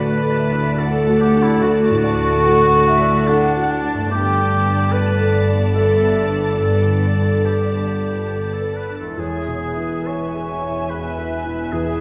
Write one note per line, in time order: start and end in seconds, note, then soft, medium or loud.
0.00 1.58 D2 medium
0.00 4.07 D2 medium
0.00 1.65 A2 medium
0.00 0.33 D3 medium
0.00 2.78 D3 medium
0.00 2.53 F#3 soft
0.00 2.83 A3 medium
0.00 4.07 A3 medium
0.00 0.11 D4 medium
0.00 2.87 D4 medium
0.00 0.39 F#4 medium
0.00 2.92 F#4 medium
0.00 4.06 A4 medium
0.00 0.80 B4 loud
0.00 0.37 D5 medium
0.00 4.07 D5 medium
0.00 4.07 A5 medium
0.22 0.67 A4 medium
0.37 0.79 E5 medium
0.50 0.95 D5 medium
0.78 1.22 A4 medium
0.78 1.22 A4 loud
0.78 1.23 A4 medium
0.78 1.61 F#5 medium
1.07 1.51 F#4 medium
1.20 1.44 G4 loud
1.20 1.44 G4 medium
1.35 1.79 D4 medium
1.43 1.61 E4 medium
1.43 1.62 E4 medium
1.62 4.07 D2 medium
1.62 3.29 F#4 loud
1.62 2.04 D5 medium
1.90 2.34 A2 medium
2.04 2.45 A5 medium
2.18 2.62 D4 medium
2.46 2.89 F#4 medium
2.46 2.87 F#5 medium
2.73 3.16 A4 medium
2.87 3.27 E5 loud
3.00 3.43 D5 medium
3.27 4.11 D4 loud
3.27 3.72 A4 medium
3.27 3.69 F#5 loud
3.55 4.00 F#4 medium
3.71 4.12 A5 loud
3.84 4.11 D4 medium
3.93 7.83 G2 medium
3.98 7.88 A3 medium
4.02 7.92 D4 medium
4.07 7.97 B4 medium
4.11 8.97 G1 medium
4.11 8.97 G2 loud
4.11 6.55 G2 medium
4.11 8.93 B3 medium
4.11 8.81 B3 medium
4.11 4.94 G4 loud
4.11 4.93 G4 loud
4.11 8.81 A4 medium
4.11 8.93 D5 medium
4.11 4.91 G5 loud
4.11 8.94 A5 medium
4.39 4.82 D3 medium
4.66 5.09 D4 medium
4.91 5.46 B4 medium
4.91 5.46 B4 loud
4.91 5.36 B4 medium
4.91 5.75 D5 medium
5.20 5.63 A4 medium
5.47 5.91 D5 medium
5.74 6.54 A4 loud
5.74 6.19 A4 medium
5.74 6.54 A4 medium
5.74 6.33 E5 medium
6.02 6.47 B4 soft
6.29 6.75 D4 soft
6.57 9.13 G2 medium
6.57 7.46 A4 medium
6.57 7.47 A4 medium
6.57 8.71 D5 medium
6.87 7.33 D3 soft
7.15 7.62 D4 soft
7.44 8.55 G4 medium
7.44 7.91 B4 soft
7.74 8.20 A4 soft
8.03 8.49 D5 soft
8.31 8.77 A4 soft
8.54 8.78 A4 medium
8.54 8.76 A4 medium
8.61 9.06 B4 soft
8.75 8.98 B4 medium
8.75 8.97 B4 medium
8.90 9.18 D4 soft
8.96 9.17 A4 medium
8.96 9.21 A4 medium
9.00 12.01 E2 soft
9.05 12.01 G#3 soft
9.09 12.01 E4 soft
9.13 11.68 E2 soft
9.13 12.01 B4 soft
9.18 12.01 E1 medium
9.18 12.01 E2 medium
9.18 12.01 B3 medium
9.18 12.01 E4 medium
9.18 10.09 G#4 medium
9.18 10.08 G#4 medium
9.18 9.59 C#5 medium
9.18 12.01 E5 medium
9.18 12.01 G#5 medium
9.47 9.95 B2 soft
9.63 10.06 B4 soft
9.77 10.23 E4 soft
10.07 10.52 B4 soft
10.07 10.48 B4 medium
10.07 10.91 C#5 medium
10.07 10.92 C#5 medium
10.35 10.79 G#4 soft
10.49 10.90 G#5 medium
10.62 11.06 E5 soft
10.90 11.34 G#4 soft
10.90 11.73 B4 medium
10.90 11.72 B4 medium
10.90 11.73 E5 medium
11.18 11.62 B4 soft
11.46 11.89 E4 soft
11.72 12.01 E2 medium
11.72 12.01 G#4 medium
11.72 12.01 G#4 loud
11.72 12.01 B4 medium